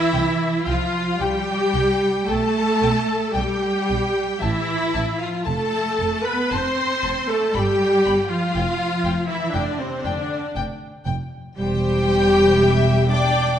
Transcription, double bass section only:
0.14 C2
0.67 C2
1.20 C2
1.75 C2
2.29 B1
2.82 B1
3.35 B1
3.89 B1
4.43 A1
4.95 A1
5.48 F1
6.00 F1
6.53 F1
7.04 F1
7.56 G1
8.07 G1
8.55 F1
9.04 F1
9.54 F1
10.06 F1
10.56 F1
11.07 F1
11.58 E1

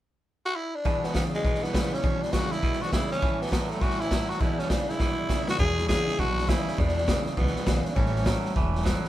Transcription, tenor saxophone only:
0.46 F#4
0.56 E4
0.75 D4
1.05 B3
1.16 B3
1.35 G#3
1.64 B3
1.93 C#4
2.23 D4
2.33 F#4
2.52 E4
2.82 F#4
2.93 E4
3.11 C#4
3.41 B3
3.52 B3
3.70 A3
3.82 F#4
4.01 E4
4.29 F#4
4.41 E4
4.59 C#4
4.69 D4
4.89 E4
5.50 F#4
5.59 G#4
5.88 G#4
6.19 F#4
6.50 E4
6.79 D4
7.38 B3
7.85 D4
7.96 C#4

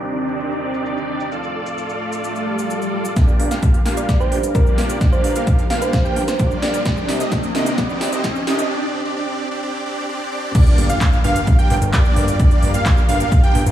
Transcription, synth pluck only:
3.97 D5
4.09 D5
4.20 C5
4.55 A#4
5.13 C5
5.82 C5
6.28 C5
6.63 D5

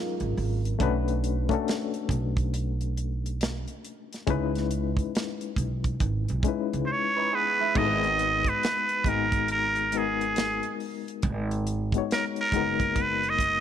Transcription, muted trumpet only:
6.86 C5
6.92 C#5
7.35 B4
7.78 D#5
8.49 B4
9.09 A#4
9.52 A#4
9.97 G#4
12.13 A#4
12.41 A#4
13.02 B4
13.29 D#5

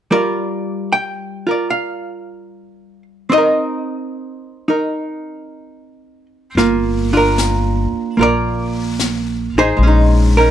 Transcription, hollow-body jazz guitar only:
0.11 G3 F4 A#4 D5
0.93 G5
1.47 F4 A#4
1.51 D5
1.70 F5
3.30 C4 D#5
3.34 D#4 A#4
4.68 D#4 A#4
6.57 A#3 F4
7.13 D4 F4
7.17 A#4
8.17 A#3 F4 A#4
8.23 D5
9.58 D#4 G#4 C5
9.77 G#3
9.83 C#4
9.87 D#4
10.37 C#4 D#4 A#4

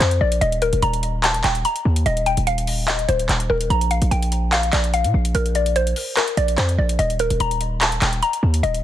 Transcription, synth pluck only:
0.00 C5
0.21 D5
0.41 D#5
0.62 A#4
0.83 A#5
1.24 A5
1.44 G5
1.65 A#5
2.06 D#5
2.26 G5
2.47 F5
2.88 D#5
3.09 C5
3.50 A#4
3.70 A#5
3.91 F5
4.11 G5
4.52 F5
4.73 D5
4.94 F5
5.35 A#4
5.55 D5
5.76 C5
6.17 A#4
6.37 D5
6.58 C5
6.79 D5
6.99 D#5
7.20 A#4
7.40 A#5
7.81 A5
8.02 G5
8.23 A#5
8.63 D#5

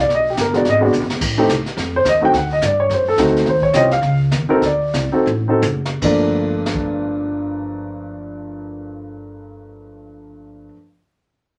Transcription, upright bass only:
0.09 B1
0.37 G1
0.65 G#1
0.93 A#1
1.03 G#1
1.12 E1
1.21 A1
1.49 C2
1.65 muted upright bass stroke
1.77 F2
2.05 D#2
2.33 D2
2.62 G2
2.89 F#2
3.18 D2
3.46 D#2
3.73 C2
4.02 C#2
4.31 D#2
4.50 muted upright bass stroke
4.62 D2
4.94 C2
5.13 muted upright bass stroke
5.26 A1
5.62 F#1
6.01 G1

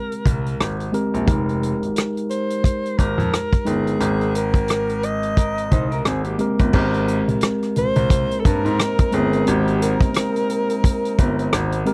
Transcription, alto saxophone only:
Already playing: A#4
2.30 C5
2.98 A#4
3.67 G#4
4.36 A#4
5.05 D#5
7.78 C5
8.40 A4
8.46 A#4
9.15 G#4
9.49 G4
9.83 A#4

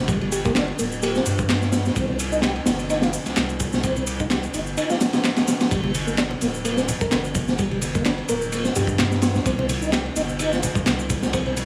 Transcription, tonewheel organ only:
0.09 G3
0.21 G3
0.45 A#3
0.56 D4
0.79 A#3
1.03 A#3
1.15 C4
1.96 C4
2.09 C4
2.32 D#4
2.43 G4
2.66 D#4
2.90 D#4
3.02 F4
3.83 C4
3.96 C4
4.20 D#4
4.31 G4
4.54 D#4
4.77 D#4
4.90 F4
5.71 G3
5.84 G3
6.07 A#3
6.18 D4
6.42 A#3
6.65 A#3
6.77 C4
7.59 G3
7.71 G3
7.95 A#3
8.06 D4
8.29 A#3
8.52 A#3
8.65 C4
9.46 C4
9.59 C4
9.82 D#4
9.93 G4
10.16 D#4
10.39 D#4
10.52 F4
11.33 C4
11.46 C4

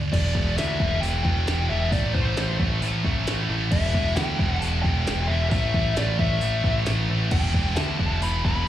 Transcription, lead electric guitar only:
0.13 D5
0.58 E5
1.01 G5
1.24 G5
1.69 E5
1.92 D5
2.14 C5
3.71 E5
4.15 G5
4.61 A5
4.82 G5
5.28 E5
5.50 E5
5.98 D5
6.20 E5
7.32 G5
7.76 A5
8.23 B5
8.46 B5

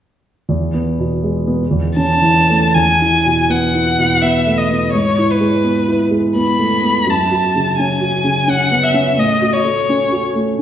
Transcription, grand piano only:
0.49 E2
0.74 B3
0.99 B2
1.24 G#3
1.47 B3
1.71 E2
1.96 C#4
2.22 E3
2.50 A3
2.76 E2
3.01 E4
3.25 B2
3.49 B3
3.74 E4
3.98 B2
4.22 B3
4.47 A3
4.70 B3
4.93 G#2
5.18 E4
5.40 G#3
5.64 B3
5.88 E4
6.11 G#3
6.35 B3
6.59 A3
6.83 B3
7.06 F#2
7.31 F#4
7.55 C#3
7.79 C#4
8.01 F#4
8.24 C#3
8.47 C#4
8.71 B3
8.94 C#4
9.17 A2
9.41 F#4
9.64 A3
9.89 C#4
10.12 F#4
10.35 A3
10.59 C#4

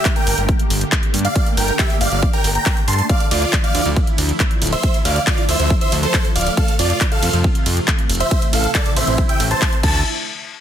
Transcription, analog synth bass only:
0.27 G1
0.38 G1
0.70 G1
1.14 G2
1.57 G1
2.01 G1
2.12 G1
2.44 G1
2.88 G2
3.31 D2
3.75 D2
3.86 D2
4.18 D2
4.62 D1
5.05 D2
5.49 D2
5.59 D2
5.92 D2
6.36 D1
6.79 F2
7.22 F2
7.33 F2
7.66 F2
8.09 F1
8.53 A1
8.96 A1
9.07 A1
9.40 A1
9.83 D2

